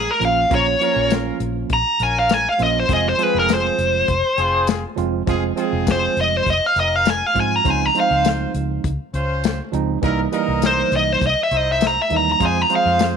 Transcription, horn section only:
0.50 0.66 C#4 medium
0.50 0.67 F4 medium
0.50 0.67 A#4 medium
0.80 1.40 C#4 medium
0.80 1.40 F4 medium
0.80 1.40 A#4 medium
2.00 2.45 C#4 medium
2.00 2.45 F4 medium
2.00 2.45 A#4 medium
2.89 3.05 C4 medium
2.89 3.05 F4 medium
2.89 3.05 G#4 medium
3.19 3.79 C4 medium
3.19 3.79 F4 medium
3.19 3.78 G#4 medium
4.37 4.83 C4 medium
4.37 4.83 F4 medium
4.37 4.83 G#4 medium
5.28 5.43 C4 medium
5.28 5.43 F4 medium
5.28 5.43 G#4 medium
5.57 6.17 C4 medium
5.57 6.17 F4 medium
5.57 6.17 G#4 medium
6.76 7.22 C4 medium
6.76 7.22 F4 medium
6.76 7.21 A#4 medium
7.65 7.81 C#4 medium
7.65 7.81 F4 medium
7.65 7.81 C5 medium
7.95 8.55 F4 medium
7.95 8.55 C5 medium
9.14 9.59 C#4 medium
9.14 9.59 F4 medium
9.14 9.59 C5 medium
10.03 10.19 D#4 medium
10.03 10.19 E4 medium
10.03 10.19 A#4 medium
10.33 10.92 D#4 medium
10.33 10.92 A#4 loud
11.51 11.97 D#4 medium
11.51 11.97 E4 medium
11.51 11.97 C5 medium
12.41 12.56 F4 medium
12.41 12.56 G#4 medium
12.41 12.57 C5 medium
12.70 13.17 F4 medium
12.70 13.17 G#4 medium
12.70 13.17 C5 medium

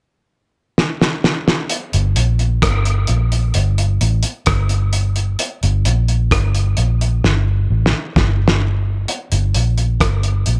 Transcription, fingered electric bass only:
1.94 2.15 G1 medium
2.17 2.59 A#1 medium
2.63 3.05 G1 medium
3.09 3.51 A#1 medium
3.55 3.97 G1 medium
4.01 4.22 A1 medium
4.47 5.35 G1 medium
5.63 5.84 G1 medium
5.86 6.28 A#1 medium
6.32 6.74 G1 medium
6.78 7.20 A#1 medium
7.24 7.66 G1 medium
7.70 7.92 A1 medium
8.17 9.05 G1 medium
9.32 9.53 G1 medium
9.55 9.97 A#1 medium
10.01 10.43 G1 medium
10.47 10.60 A#1 medium

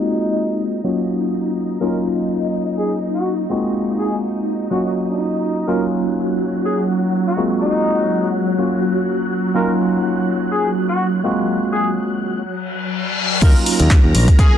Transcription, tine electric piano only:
0.00 0.79 G#3 medium
0.00 0.79 A#3 medium
0.00 0.80 C4 medium
0.00 0.80 F4 medium
0.00 0.80 F#4 loud
0.84 1.76 F#3 medium
0.84 1.76 A#3 medium
0.84 1.77 C#4 medium
0.84 1.77 F4 medium
0.84 1.77 F#4 medium
1.80 3.46 F#3 medium
1.80 3.46 A#3 medium
1.80 3.46 C#4 medium
1.80 3.46 D#4 medium
1.80 3.47 F4 loud
3.50 4.67 G#3 medium
3.50 4.67 A#3 medium
3.50 4.67 C4 medium
3.50 4.67 F4 medium
3.50 4.67 F#4 loud
4.70 5.63 F#3 medium
4.70 5.63 A#3 medium
4.70 5.64 C#4 medium
4.70 5.64 F4 medium
4.70 5.64 F#4 medium
5.67 7.33 F#3 medium
5.67 7.33 A#3 medium
5.67 7.33 C#4 medium
5.67 7.33 D#4 medium
5.67 7.33 F4 loud
7.37 8.54 G#3 medium
7.37 8.54 A#3 medium
7.37 8.54 C4 medium
7.37 8.54 F4 medium
7.37 8.54 F#4 medium
8.58 9.50 F#3 medium
8.58 9.51 A#3 medium
8.58 9.51 C#4 medium
8.58 9.51 F4 medium
8.58 9.51 F#4 medium
9.54 11.20 F#3 medium
9.54 11.20 A#3 medium
9.54 11.20 C#4 medium
9.54 11.20 D#4 medium
9.54 11.20 F4 loud
11.24 12.41 G#3 medium
11.24 12.41 A#3 medium
11.24 12.41 C4 medium
11.24 12.41 F4 medium
11.24 12.42 F#4 loud
13.42 14.58 F#3 loud
13.42 14.58 A#3 medium
13.42 14.58 C#4 medium
13.42 14.58 D#4 medium
13.42 14.58 F4 loud

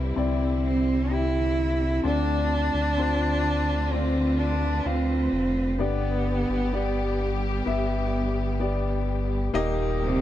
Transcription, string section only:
0.00 9.50 D3 medium
0.00 2.01 G3 medium
0.00 3.88 C4 medium
0.00 2.01 E4 medium
2.03 5.75 A3 medium
2.03 5.75 F4 medium
3.92 5.77 B4 medium
5.78 9.50 G3 medium
5.78 9.50 B3 medium
5.78 9.50 G4 medium
9.53 10.21 A#2 medium
9.53 10.21 G3 medium
9.53 10.21 A#3 medium
9.53 10.21 G4 loud

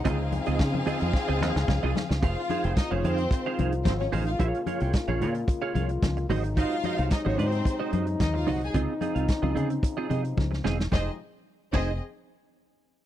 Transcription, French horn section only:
0.00 2.05 D#4 loud
0.05 2.05 C#3 medium
0.05 2.05 F3 medium
0.05 2.05 C4 medium
2.22 4.37 D#3 medium
2.22 6.26 G#3 medium
2.22 4.38 C4 medium
2.22 6.26 F4 medium
4.38 6.27 C#3 medium
4.38 6.27 A#3 medium
6.30 8.72 C3 medium
6.30 8.72 F#3 medium
6.30 8.72 G#3 medium
6.30 10.75 D#4 loud
8.73 10.75 C#3 medium
8.73 10.75 F3 medium
8.73 10.75 C4 medium
10.92 11.17 C3 medium
10.92 11.17 F3 medium
10.92 11.17 G#3 medium
10.92 11.17 D#4 medium

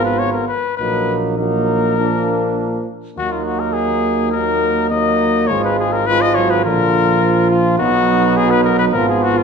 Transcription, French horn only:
0.00 0.49 B3 medium
0.80 1.35 A#3 medium
1.38 1.97 A#3 medium
1.98 2.87 A#3 medium
3.18 4.31 A#3 medium
4.35 4.91 A#3 medium
4.92 5.52 A#3 medium
5.50 6.07 G#3 medium
6.07 6.36 G#3 medium
6.38 6.65 F#3 medium
6.66 7.82 F3 medium
7.80 8.94 B3 medium
8.94 9.43 B3 medium

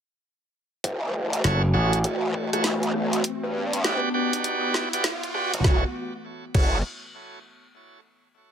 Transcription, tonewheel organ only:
1.44 1.62 E4 medium
1.44 1.62 F#4 medium
1.44 1.62 A4 medium
1.44 1.63 C#5 loud
1.74 1.99 E4 medium
1.74 1.99 F#4 medium
1.74 1.99 A4 medium
1.74 1.99 C#5 loud
2.53 2.64 E4 medium
2.53 2.64 F#4 medium
2.53 2.64 A4 medium
2.53 2.64 C#5 medium
3.84 4.09 F#4 medium
3.84 4.09 G4 medium
3.84 4.09 B4 medium
3.84 4.09 D5 loud
4.14 4.89 F#4 medium
4.14 4.89 G4 medium
4.14 4.89 B4 medium
4.14 4.89 D5 medium
4.93 5.04 F#4 medium
4.93 5.04 G4 medium
4.93 5.04 B4 medium
4.93 5.04 D5 medium
5.34 5.52 F#4 medium
5.34 5.53 G4 medium
5.34 5.52 B4 medium
5.34 5.53 D5 medium
5.65 5.84 E4 medium
5.65 5.84 F#4 medium
5.65 5.84 A4 medium
5.65 5.84 C#5 medium
6.54 6.78 E4 medium
6.54 6.78 F#4 medium
6.54 6.78 A4 medium
6.54 6.78 C#5 loud

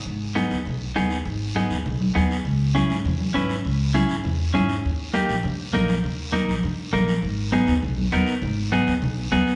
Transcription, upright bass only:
0.06 0.42 G#1 medium
0.51 0.63 D#2 medium
0.66 0.90 B1 medium
0.96 1.20 D#2 medium
1.25 1.61 G#1 loud
1.71 1.83 D#2 medium
1.86 2.09 B1 loud
2.15 2.39 D#2 medium
2.45 2.81 C#2 medium
2.90 3.02 G#1 medium
3.05 3.29 E2 medium
3.35 3.59 G#1 medium
3.65 4.01 C#2 medium
4.10 4.21 G#1 medium
4.25 4.48 E2 loud
4.55 4.78 G#1 loud
4.85 5.20 D#2 medium
5.29 5.41 A#1 medium
5.44 5.68 G2 medium
5.74 5.98 A#1 medium
6.04 6.39 D#2 medium
6.48 6.60 A#1 medium
6.63 6.87 G2 loud
6.93 7.17 A#1 medium
7.23 7.59 G#1 medium
7.68 7.80 D#2 medium
7.83 8.06 B1 loud
8.12 8.36 D#2 medium
8.42 8.78 G#1 medium
8.87 8.99 D#2 medium
9.02 9.26 B1 loud
9.32 9.55 D#2 medium

